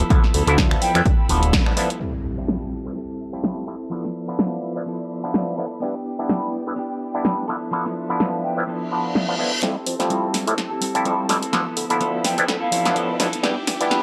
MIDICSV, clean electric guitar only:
0, 0, Header, 1, 2, 480
1, 0, Start_track
1, 0, Tempo, 476190
1, 104, Time_signature, 4, 2, 24, 8
1, 14141, End_track
2, 0, Start_track
2, 0, Title_t, "Clean electric guitar"
2, 0, Program_c, 0, 27
2, 0, Note_on_c, 0, 69, 83
2, 95, Note_on_c, 0, 53, 84
2, 104, Note_off_c, 0, 69, 0
2, 104, Note_on_c, 0, 59, 92
2, 110, Note_on_c, 0, 64, 95
2, 117, Note_on_c, 0, 69, 102
2, 320, Note_off_c, 0, 53, 0
2, 332, Note_off_c, 0, 59, 0
2, 333, Note_on_c, 0, 53, 69
2, 342, Note_off_c, 0, 64, 0
2, 344, Note_on_c, 0, 59, 71
2, 350, Note_off_c, 0, 69, 0
2, 354, Note_on_c, 0, 64, 78
2, 362, Note_on_c, 0, 69, 77
2, 454, Note_off_c, 0, 69, 0
2, 466, Note_on_c, 0, 69, 59
2, 471, Note_off_c, 0, 64, 0
2, 472, Note_off_c, 0, 53, 0
2, 478, Note_off_c, 0, 59, 0
2, 483, Note_on_c, 0, 64, 55
2, 576, Note_on_c, 0, 53, 90
2, 578, Note_off_c, 0, 64, 0
2, 578, Note_off_c, 0, 69, 0
2, 590, Note_on_c, 0, 64, 100
2, 597, Note_on_c, 0, 69, 99
2, 695, Note_off_c, 0, 69, 0
2, 707, Note_on_c, 0, 69, 56
2, 712, Note_off_c, 0, 64, 0
2, 714, Note_off_c, 0, 53, 0
2, 724, Note_on_c, 0, 64, 48
2, 738, Note_on_c, 0, 59, 49
2, 813, Note_off_c, 0, 59, 0
2, 814, Note_on_c, 0, 53, 71
2, 819, Note_off_c, 0, 69, 0
2, 823, Note_off_c, 0, 64, 0
2, 826, Note_on_c, 0, 59, 69
2, 835, Note_on_c, 0, 64, 76
2, 843, Note_on_c, 0, 69, 77
2, 936, Note_off_c, 0, 69, 0
2, 949, Note_on_c, 0, 69, 59
2, 953, Note_off_c, 0, 53, 0
2, 953, Note_off_c, 0, 64, 0
2, 959, Note_off_c, 0, 59, 0
2, 965, Note_on_c, 0, 64, 53
2, 977, Note_on_c, 0, 59, 51
2, 1294, Note_off_c, 0, 59, 0
2, 1294, Note_on_c, 0, 53, 67
2, 1299, Note_off_c, 0, 69, 0
2, 1303, Note_off_c, 0, 64, 0
2, 1306, Note_on_c, 0, 59, 74
2, 1315, Note_on_c, 0, 64, 75
2, 1324, Note_on_c, 0, 69, 74
2, 1417, Note_off_c, 0, 69, 0
2, 1429, Note_on_c, 0, 69, 60
2, 1433, Note_off_c, 0, 53, 0
2, 1433, Note_off_c, 0, 64, 0
2, 1439, Note_off_c, 0, 59, 0
2, 1445, Note_on_c, 0, 64, 54
2, 1458, Note_on_c, 0, 59, 48
2, 1532, Note_off_c, 0, 59, 0
2, 1536, Note_on_c, 0, 53, 86
2, 1539, Note_off_c, 0, 64, 0
2, 1539, Note_off_c, 0, 69, 0
2, 1544, Note_on_c, 0, 59, 97
2, 1551, Note_on_c, 0, 64, 88
2, 1558, Note_on_c, 0, 69, 101
2, 1656, Note_off_c, 0, 69, 0
2, 1668, Note_on_c, 0, 69, 59
2, 1673, Note_off_c, 0, 64, 0
2, 1674, Note_off_c, 0, 53, 0
2, 1678, Note_off_c, 0, 59, 0
2, 1685, Note_on_c, 0, 64, 55
2, 1698, Note_on_c, 0, 59, 52
2, 1774, Note_off_c, 0, 59, 0
2, 1775, Note_on_c, 0, 53, 68
2, 1779, Note_off_c, 0, 69, 0
2, 1784, Note_off_c, 0, 64, 0
2, 1786, Note_on_c, 0, 59, 74
2, 1796, Note_on_c, 0, 64, 73
2, 1804, Note_on_c, 0, 69, 77
2, 2005, Note_off_c, 0, 53, 0
2, 2009, Note_on_c, 0, 55, 76
2, 2023, Note_off_c, 0, 59, 0
2, 2027, Note_on_c, 0, 60, 87
2, 2030, Note_off_c, 0, 64, 0
2, 2034, Note_off_c, 0, 69, 0
2, 2041, Note_on_c, 0, 64, 89
2, 2055, Note_on_c, 0, 69, 93
2, 2963, Note_off_c, 0, 55, 0
2, 2974, Note_off_c, 0, 60, 0
2, 2975, Note_on_c, 0, 55, 62
2, 2987, Note_on_c, 0, 60, 63
2, 2993, Note_off_c, 0, 64, 0
2, 2997, Note_on_c, 0, 64, 66
2, 3001, Note_off_c, 0, 69, 0
2, 3005, Note_on_c, 0, 69, 72
2, 3690, Note_off_c, 0, 69, 0
2, 3695, Note_on_c, 0, 69, 63
2, 3700, Note_off_c, 0, 55, 0
2, 3705, Note_off_c, 0, 60, 0
2, 3706, Note_off_c, 0, 64, 0
2, 3710, Note_on_c, 0, 64, 53
2, 3724, Note_on_c, 0, 60, 51
2, 3929, Note_on_c, 0, 53, 83
2, 3939, Note_off_c, 0, 69, 0
2, 3944, Note_off_c, 0, 60, 0
2, 3947, Note_off_c, 0, 64, 0
2, 3948, Note_on_c, 0, 59, 86
2, 3961, Note_on_c, 0, 64, 87
2, 3975, Note_on_c, 0, 69, 87
2, 4882, Note_off_c, 0, 53, 0
2, 4894, Note_on_c, 0, 53, 69
2, 4902, Note_off_c, 0, 59, 0
2, 4906, Note_on_c, 0, 59, 66
2, 4911, Note_off_c, 0, 69, 0
2, 4912, Note_off_c, 0, 64, 0
2, 4916, Note_on_c, 0, 64, 69
2, 4924, Note_on_c, 0, 69, 72
2, 5603, Note_off_c, 0, 69, 0
2, 5615, Note_on_c, 0, 69, 64
2, 5619, Note_off_c, 0, 53, 0
2, 5627, Note_off_c, 0, 64, 0
2, 5631, Note_on_c, 0, 64, 58
2, 5640, Note_off_c, 0, 59, 0
2, 5644, Note_on_c, 0, 59, 52
2, 5837, Note_off_c, 0, 59, 0
2, 5849, Note_on_c, 0, 59, 87
2, 5859, Note_off_c, 0, 69, 0
2, 5867, Note_off_c, 0, 64, 0
2, 5874, Note_on_c, 0, 62, 90
2, 5895, Note_on_c, 0, 67, 92
2, 6810, Note_off_c, 0, 59, 0
2, 6814, Note_on_c, 0, 59, 66
2, 6827, Note_off_c, 0, 62, 0
2, 6831, Note_on_c, 0, 62, 68
2, 6833, Note_off_c, 0, 67, 0
2, 6845, Note_on_c, 0, 67, 68
2, 7533, Note_off_c, 0, 67, 0
2, 7537, Note_on_c, 0, 69, 60
2, 7549, Note_off_c, 0, 62, 0
2, 7553, Note_on_c, 0, 64, 57
2, 7562, Note_off_c, 0, 59, 0
2, 7566, Note_on_c, 0, 59, 49
2, 7771, Note_on_c, 0, 53, 82
2, 7777, Note_off_c, 0, 59, 0
2, 7781, Note_off_c, 0, 69, 0
2, 7788, Note_off_c, 0, 64, 0
2, 7789, Note_on_c, 0, 59, 84
2, 7803, Note_on_c, 0, 64, 90
2, 7817, Note_on_c, 0, 69, 99
2, 8732, Note_off_c, 0, 53, 0
2, 8735, Note_off_c, 0, 59, 0
2, 8736, Note_on_c, 0, 53, 68
2, 8748, Note_on_c, 0, 59, 73
2, 8753, Note_off_c, 0, 64, 0
2, 8757, Note_on_c, 0, 64, 71
2, 8762, Note_off_c, 0, 69, 0
2, 8766, Note_on_c, 0, 69, 73
2, 9453, Note_off_c, 0, 69, 0
2, 9457, Note_on_c, 0, 69, 61
2, 9466, Note_off_c, 0, 59, 0
2, 9469, Note_off_c, 0, 64, 0
2, 9473, Note_on_c, 0, 64, 55
2, 9486, Note_on_c, 0, 59, 51
2, 9503, Note_off_c, 0, 53, 0
2, 9698, Note_on_c, 0, 55, 92
2, 9701, Note_off_c, 0, 69, 0
2, 9702, Note_off_c, 0, 64, 0
2, 9703, Note_off_c, 0, 59, 0
2, 9707, Note_on_c, 0, 60, 89
2, 9714, Note_on_c, 0, 64, 88
2, 9720, Note_on_c, 0, 69, 94
2, 9818, Note_off_c, 0, 69, 0
2, 9830, Note_on_c, 0, 69, 56
2, 9835, Note_off_c, 0, 55, 0
2, 9835, Note_off_c, 0, 64, 0
2, 9840, Note_off_c, 0, 60, 0
2, 9847, Note_on_c, 0, 64, 57
2, 9860, Note_on_c, 0, 60, 51
2, 10176, Note_off_c, 0, 60, 0
2, 10179, Note_on_c, 0, 55, 81
2, 10180, Note_off_c, 0, 69, 0
2, 10182, Note_off_c, 0, 64, 0
2, 10188, Note_on_c, 0, 60, 90
2, 10194, Note_on_c, 0, 64, 95
2, 10200, Note_on_c, 0, 69, 90
2, 10404, Note_off_c, 0, 55, 0
2, 10415, Note_off_c, 0, 60, 0
2, 10416, Note_on_c, 0, 55, 65
2, 10425, Note_off_c, 0, 64, 0
2, 10427, Note_on_c, 0, 60, 68
2, 10432, Note_off_c, 0, 69, 0
2, 10437, Note_on_c, 0, 64, 74
2, 10445, Note_on_c, 0, 69, 77
2, 10537, Note_off_c, 0, 69, 0
2, 10549, Note_on_c, 0, 69, 60
2, 10554, Note_off_c, 0, 55, 0
2, 10554, Note_off_c, 0, 64, 0
2, 10560, Note_off_c, 0, 60, 0
2, 10566, Note_on_c, 0, 64, 55
2, 10579, Note_on_c, 0, 60, 49
2, 10777, Note_off_c, 0, 69, 0
2, 10789, Note_on_c, 0, 69, 62
2, 10794, Note_off_c, 0, 64, 0
2, 10806, Note_off_c, 0, 60, 0
2, 10807, Note_on_c, 0, 64, 60
2, 10818, Note_on_c, 0, 60, 47
2, 10895, Note_off_c, 0, 60, 0
2, 10895, Note_on_c, 0, 55, 63
2, 10900, Note_off_c, 0, 69, 0
2, 10905, Note_off_c, 0, 64, 0
2, 10907, Note_on_c, 0, 60, 71
2, 10917, Note_on_c, 0, 64, 70
2, 10925, Note_on_c, 0, 69, 72
2, 11125, Note_off_c, 0, 55, 0
2, 11133, Note_off_c, 0, 60, 0
2, 11137, Note_on_c, 0, 55, 83
2, 11140, Note_off_c, 0, 64, 0
2, 11145, Note_off_c, 0, 69, 0
2, 11145, Note_on_c, 0, 60, 94
2, 11152, Note_on_c, 0, 64, 91
2, 11158, Note_on_c, 0, 69, 102
2, 11363, Note_off_c, 0, 55, 0
2, 11374, Note_off_c, 0, 60, 0
2, 11375, Note_on_c, 0, 55, 74
2, 11383, Note_off_c, 0, 64, 0
2, 11386, Note_on_c, 0, 60, 72
2, 11391, Note_off_c, 0, 69, 0
2, 11396, Note_on_c, 0, 64, 81
2, 11404, Note_on_c, 0, 69, 84
2, 11497, Note_off_c, 0, 69, 0
2, 11509, Note_on_c, 0, 69, 58
2, 11513, Note_off_c, 0, 55, 0
2, 11514, Note_off_c, 0, 64, 0
2, 11519, Note_off_c, 0, 60, 0
2, 11526, Note_on_c, 0, 64, 53
2, 11540, Note_on_c, 0, 60, 51
2, 11617, Note_on_c, 0, 53, 90
2, 11619, Note_off_c, 0, 64, 0
2, 11620, Note_off_c, 0, 60, 0
2, 11620, Note_off_c, 0, 69, 0
2, 11624, Note_on_c, 0, 59, 90
2, 11631, Note_on_c, 0, 64, 92
2, 11637, Note_on_c, 0, 69, 95
2, 11734, Note_off_c, 0, 69, 0
2, 11747, Note_on_c, 0, 69, 61
2, 11751, Note_off_c, 0, 64, 0
2, 11755, Note_off_c, 0, 53, 0
2, 11758, Note_off_c, 0, 59, 0
2, 11763, Note_on_c, 0, 64, 56
2, 11776, Note_on_c, 0, 59, 54
2, 12091, Note_off_c, 0, 59, 0
2, 12095, Note_on_c, 0, 53, 88
2, 12098, Note_off_c, 0, 64, 0
2, 12098, Note_off_c, 0, 69, 0
2, 12103, Note_on_c, 0, 59, 91
2, 12110, Note_on_c, 0, 64, 99
2, 12116, Note_on_c, 0, 69, 105
2, 12321, Note_off_c, 0, 53, 0
2, 12332, Note_off_c, 0, 59, 0
2, 12333, Note_on_c, 0, 53, 72
2, 12342, Note_off_c, 0, 64, 0
2, 12345, Note_on_c, 0, 59, 69
2, 12350, Note_off_c, 0, 69, 0
2, 12354, Note_on_c, 0, 64, 78
2, 12363, Note_on_c, 0, 69, 75
2, 12456, Note_off_c, 0, 69, 0
2, 12468, Note_on_c, 0, 69, 66
2, 12472, Note_off_c, 0, 64, 0
2, 12473, Note_off_c, 0, 53, 0
2, 12478, Note_off_c, 0, 59, 0
2, 12484, Note_on_c, 0, 64, 57
2, 12497, Note_on_c, 0, 59, 49
2, 12696, Note_off_c, 0, 69, 0
2, 12708, Note_on_c, 0, 69, 62
2, 12713, Note_off_c, 0, 64, 0
2, 12725, Note_on_c, 0, 64, 57
2, 12728, Note_off_c, 0, 59, 0
2, 12738, Note_on_c, 0, 59, 50
2, 12813, Note_on_c, 0, 53, 70
2, 12814, Note_off_c, 0, 59, 0
2, 12819, Note_off_c, 0, 69, 0
2, 12822, Note_off_c, 0, 64, 0
2, 12826, Note_on_c, 0, 59, 69
2, 12834, Note_on_c, 0, 64, 77
2, 12843, Note_on_c, 0, 69, 73
2, 13043, Note_off_c, 0, 53, 0
2, 13051, Note_off_c, 0, 59, 0
2, 13055, Note_on_c, 0, 53, 87
2, 13058, Note_off_c, 0, 64, 0
2, 13063, Note_on_c, 0, 59, 89
2, 13064, Note_off_c, 0, 69, 0
2, 13070, Note_on_c, 0, 64, 94
2, 13076, Note_on_c, 0, 69, 96
2, 13282, Note_off_c, 0, 53, 0
2, 13294, Note_off_c, 0, 59, 0
2, 13294, Note_on_c, 0, 53, 74
2, 13303, Note_off_c, 0, 64, 0
2, 13306, Note_on_c, 0, 59, 69
2, 13310, Note_off_c, 0, 69, 0
2, 13315, Note_on_c, 0, 64, 77
2, 13324, Note_on_c, 0, 69, 82
2, 13415, Note_off_c, 0, 69, 0
2, 13427, Note_on_c, 0, 69, 63
2, 13431, Note_off_c, 0, 64, 0
2, 13433, Note_off_c, 0, 53, 0
2, 13439, Note_off_c, 0, 59, 0
2, 13443, Note_on_c, 0, 64, 56
2, 13456, Note_on_c, 0, 59, 50
2, 13523, Note_off_c, 0, 59, 0
2, 13535, Note_on_c, 0, 59, 88
2, 13539, Note_off_c, 0, 69, 0
2, 13543, Note_off_c, 0, 64, 0
2, 13547, Note_on_c, 0, 62, 98
2, 13557, Note_on_c, 0, 67, 99
2, 13656, Note_off_c, 0, 67, 0
2, 13668, Note_on_c, 0, 67, 63
2, 13674, Note_off_c, 0, 59, 0
2, 13680, Note_off_c, 0, 62, 0
2, 13699, Note_on_c, 0, 62, 53
2, 14015, Note_off_c, 0, 62, 0
2, 14015, Note_on_c, 0, 59, 86
2, 14019, Note_off_c, 0, 67, 0
2, 14027, Note_on_c, 0, 62, 90
2, 14036, Note_on_c, 0, 67, 95
2, 14141, Note_off_c, 0, 59, 0
2, 14141, Note_off_c, 0, 62, 0
2, 14141, Note_off_c, 0, 67, 0
2, 14141, End_track
0, 0, End_of_file